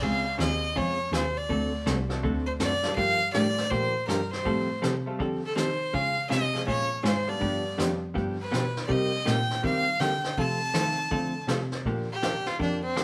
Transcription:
0.02 C#2 C#3 G#3 C4 F4 G#4 F5, brush sweep, kick
0.38 D#2 C#3 G#3 C4 C#4 F4 G#4 D#5, snare, hi-hat pedal
0.76 F2 C#3 G#3 C4 F4 G#4 C#5, brush sweep, kick
1.12 D#2 C#3 G#3 C4 F4 G#4 C5, snare, hi-hat pedal
1.37 D5
1.49 D2 D3 A3 C4 F#4 A4, brush sweep, kick
1.86 C2 D3 A3 C4 F#4 A4, snare, hi-hat pedal
2.09 A3 C4 D4 F#4 A4, snare
2.23 D2 D3 A3 C4 F#4 A4, brush sweep, kick
2.46 C5
2.60 F#2 D3 A3 C4 F#4 A4 D5, snare, hi-hat pedal
2.83 F#2 G3 A#3 D4 F4 A4, snare
2.96 G2 D3 F3 A#3 D4 G4 F5, brush sweep, kick
3.33 A2 D3 F3 G3 A#3 D4 F4 G4 D5, snare, hi-hat pedal
3.58 snare
3.70 A#2 D3 F3 A#3 D4 G4 C5, brush sweep, kick
4.07 G2 D3 F3 A#3 D4 G4 A#4, snare, hi-hat pedal
4.23 A#4
4.31 C5, snare
4.44 A2 F3 G3 A3 C4 F4 G4 A4, brush sweep, kick
4.82 C3 F3 G3 C4 G4 A4, snare, hi-hat pedal
5.06 G3 A3 C4 F4 A4
5.19 D3 F3 G3 C4 G4 A4, brush sweep, kick
5.46 A4
5.56 D#3 F3 G3 C4 G4 A4 C5, snare, hi-hat pedal
5.93 C#3 G#3 C#4 F4 G#4 F5, brush sweep, kick
6.18 C#3
6.29 C3 C#3 G#3 C#4 F4 G#4 D#5, snare, hi-hat pedal
6.53 C3 F3 G#3 C#4 F4 G#4, snare
6.67 A#2 C#3 G#3 C#4 F4 G#4 C#5, brush sweep, kick
7.03 G#2 C#3 G#3 C#4 F4 G#4 C5, snare, hi-hat pedal
7.27 G3 B3 D4 F4 A4 D5
7.40 G2 D3 F3 B3 D4 G4, brush sweep, kick
7.78 F2 D3 F3 G3 B3 D4 F4 G4, snare, hi-hat pedal
8.14 G2 D3 F3 B3 D4 G4, brush sweep, kick
8.41 B4
8.51 B2 D3 F3 B3 D4 G4, snare, hi-hat pedal
8.77 snare
8.86 C3 G3 A#3 C4 D#4 G4 D5, brush sweep, kick
8.91 D#5
9.25 A#2 C3 G3 A#3 D#4 G4 G5, snare, hi-hat pedal
9.51 snare
9.62 C3 D#3 G3 A#3 C4 D#4 G4 F5, brush sweep, kick
10.00 C3 D3 G3 A#3 D#4 G4 G5, snare, hi-hat pedal
10.24 snare
10.37 C3 F3 A3 C4 F4 A4 A5, brush sweep, kick
10.74 D#3 F3 A3 C4 F4 A4, snare, hi-hat pedal
11.11 D3 F3 A3 C4 F4 A4, brush sweep, kick
11.48 C3 F3 A3 C4 F4 A4, snare, hi-hat pedal
11.72 snare
11.85 A#2 D3 F3 A#3 D4 G4, brush sweep, kick
12.12 G4
12.22 D3 F3 A#3 D4 F4 G4, snare, hi-hat pedal
12.46 F4, snare
12.59 F2 D3 F3 A#3 D4 G4, brush sweep, kick
12.82 C4
12.96 D3 F3 A#3 D4 G4, snare, hi-hat pedal

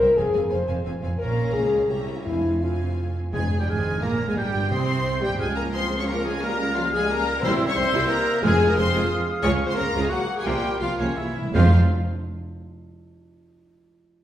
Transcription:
Already playing: A#4
0.01 C2 C4 E5 G5
0.17 F1 F2 C4 G#4 F5 G#5
0.32 F1 F2 C4 F5 G#5
0.43 A#4
0.49 F1 F2 C4 C5 F5 G#5
0.67 F1 F2 C4 F5 G#5
0.84 F1 F2 C4 F5 G#5
1.02 F1 F2 C4 F5 G#5
1.18 A#1 A#2 C#4 A#4 F5 A#5
1.53 C#2 G#4
1.88 C2 C#4 G4 E5 A#5
2.17 E4
2.25 F1 F2 C4 E4 F5 G#5
2.61 C4 F4 F5 G#5
3.33 G#1 F2 G#2 G#3 G#4 G#5
3.58 G2 G3 G4 G5
3.67 G#1 G#2 G#3 G#4 G#5 F6
4.02 A#1 A#2 A#3 A#4 A#5
4.27 G#2 G#3 G#4 G#5
4.36 G1 G2 G3 G4 G5 G6
4.71 C2 C3 C4 C5 C6 D#6
5.06 G6
5.21 G1 G2 G3 G4 G5
5.37 C#2 F3 F4 G#4 F5 G#5 F6
5.42 G#3
5.55 A#3 A#4 A#5
5.72 C4 C5 C6 D#6
5.99 C#4 C#5 C#6
6.08 A#3 A#4 A#5 C#6
6.24 G#3 G#4 G#5
6.42 G3 A#3 A#4 A#5 F6
6.75 F3 F4 F5
6.92 G#3 G#4 G#5
7.09 A#3 A#4 A#5
7.41 C2 C3 G3 C4 E4 C5 E5 C6 E6
7.66 C#4 C#5 C#6
7.74 C2 C3 G3 C4 C5 C6 G6
7.92 C2 G3 E4
8.07 A#3 A#4 A#5
8.42 F1 F2 G#3 F4 G#4 F5 G#5 F6
8.67 A#3 A#4 A#5
8.75 F1 F2 C3 G#3 C4 C5 C6 D#6
8.92 F1 F2 G#3 F4
9.42 C#2 C#3 G#3 C#4 F4 C#5 C#6
9.66 C4 C5 C6
9.75 C#2 C#3 G#3 A#3 A#4 A#5
9.93 C#2 C#3 G#3 F4
10.01 G#3 G#4 G#5
10.09 F#3 A#3 F#4 F#5 C#6
10.35 G#3 G#4 G#5
10.43 C2 C3 G3 A#3 F4 G4 F5 G5 C6
10.79 C2 C3 F3 A#3 F4 F5
10.97 C2 C3 C#3 A#3 C#4 F4 C#5
11.16 C3 E3 E4 C#5 E5 E6
11.25 C3
11.33 C3
11.42 C3
11.53 F1 F2 G#3 C4 F4 C5 F5 F6

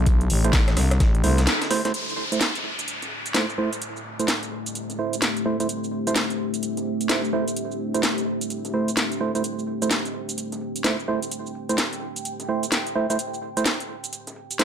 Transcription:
Already playing: B1 D4 G4 C5 A5
0.06 kick, closed hi-hat
0.21 closed hi-hat
0.30 A1, closed hi-hat, open hi-hat
0.44 A3 E4 C5, closed hi-hat
0.53 A1, kick, snare, closed hi-hat
0.68 cross-stick, snare, closed hi-hat
0.77 C2, cross-stick, snare, closed hi-hat, open hi-hat
0.91 cross-stick, snare, closed hi-hat
1.00 A1, kick, snare, closed hi-hat
1.15 closed hi-hat
1.24 C2 A3 E4 C5, snare, closed hi-hat, open hi-hat
1.38 snare, closed hi-hat
1.47 snare, closed hi-hat
1.62 snare, closed hi-hat
1.71 A3 E4 C5, snare, closed hi-hat, open hi-hat
1.85 A3 E4 C5, snare, closed hi-hat
1.94 A3, closed hi-hat, downlifter, shaker
2.09 D4 E5, closed hi-hat, shaker
2.17 closed hi-hat
2.30 A3 E4 G4 C5, closed hi-hat, shaker
2.41 snare, closed hi-hat, shaker
2.55 snare, closed hi-hat, shaker
2.64 closed hi-hat
2.79 closed hi-hat, shaker
2.88 closed hi-hat, shaker
3.02 snare, closed hi-hat, shaker
3.11 closed hi-hat
3.26 closed hi-hat, shaker
3.34 A3 E4 C5, snare, closed hi-hat, shaker
3.50 shaker
3.58 A3 E4 C5, snare
3.73 closed hi-hat, shaker
3.81 closed hi-hat, shaker
3.97 shaker
4.05 closed hi-hat
4.19 A3 E4 C5, closed hi-hat, shaker
4.28 snare, closed hi-hat, shaker
4.43 snare, closed hi-hat, shaker
4.52 closed hi-hat
4.66 closed hi-hat, shaker
4.75 closed hi-hat, shaker
4.90 snare, closed hi-hat, shaker
4.99 A3 E4 C5
5.13 closed hi-hat, shaker
5.22 snare, closed hi-hat, shaker
5.37 closed hi-hat, shaker
5.46 A3 E4 C5
5.60 A3 E4 C5, closed hi-hat, shaker
5.69 closed hi-hat, shaker
5.83 closed hi-hat, shaker
5.92 closed hi-hat
6.07 A3 E4 C5, closed hi-hat, shaker
6.16 snare, closed hi-hat, shaker
6.30 snare, closed hi-hat, shaker
6.39 closed hi-hat
6.54 closed hi-hat, shaker
6.63 closed hi-hat, shaker
6.77 snare, closed hi-hat, shaker
6.86 closed hi-hat
7.01 closed hi-hat, shaker
7.09 A3 E4 C5, snare, closed hi-hat, shaker
7.25 shaker
7.33 A3 E4 C5, snare
7.48 closed hi-hat, shaker
7.56 closed hi-hat, shaker
7.72 shaker
7.80 closed hi-hat
7.94 A3 E4 C5, closed hi-hat, shaker
8.03 snare, closed hi-hat, shaker
8.18 snare, closed hi-hat, shaker
8.27 closed hi-hat
8.41 closed hi-hat, shaker
8.50 closed hi-hat, shaker
8.65 snare, closed hi-hat, shaker
8.74 A3 E4 C5, closed hi-hat
8.88 closed hi-hat, shaker
8.97 snare, closed hi-hat, shaker
9.12 closed hi-hat, shaker
9.21 A3 E4 C5
9.35 A3 E4 C5, closed hi-hat, shaker
9.44 closed hi-hat, shaker
9.59 G5, closed hi-hat, shaker
9.67 closed hi-hat
9.82 A3 E4 C5, closed hi-hat, shaker
9.91 snare, closed hi-hat, shaker
10.05 snare, closed hi-hat, shaker
10.14 closed hi-hat
10.29 closed hi-hat, shaker
10.38 closed hi-hat, shaker
10.52 snare, closed hi-hat, shaker
10.61 closed hi-hat
10.76 closed hi-hat, shaker
10.84 A3 E4 C5, snare, closed hi-hat, shaker
11.00 shaker
11.08 A3 E4 C5, snare, closed hi-hat
11.22 closed hi-hat, shaker
11.31 closed hi-hat, shaker
11.46 shaker
11.55 closed hi-hat
11.69 A3 E4 C5, closed hi-hat, shaker
11.78 snare, closed hi-hat, shaker
11.93 snare, closed hi-hat, shaker
12.02 closed hi-hat
12.16 closed hi-hat, shaker
12.25 closed hi-hat, shaker
12.40 snare, closed hi-hat, shaker
12.49 A3 E4 C5, closed hi-hat
12.63 closed hi-hat, shaker
12.72 snare, closed hi-hat, shaker
12.87 closed hi-hat, shaker
12.96 A3 E4 C5, closed hi-hat
13.10 A3 E4 C5, closed hi-hat, shaker
13.19 closed hi-hat, shaker
13.33 closed hi-hat, shaker
13.42 closed hi-hat
13.57 A3 E4 C5, closed hi-hat, shaker
13.66 snare, closed hi-hat, shaker
13.80 snare, closed hi-hat, shaker
13.89 closed hi-hat
14.04 closed hi-hat, shaker
14.13 closed hi-hat, shaker
14.27 snare, closed hi-hat, shaker
14.36 closed hi-hat
14.51 closed hi-hat, shaker
14.59 A3 E4 C5, snare, closed hi-hat, shaker

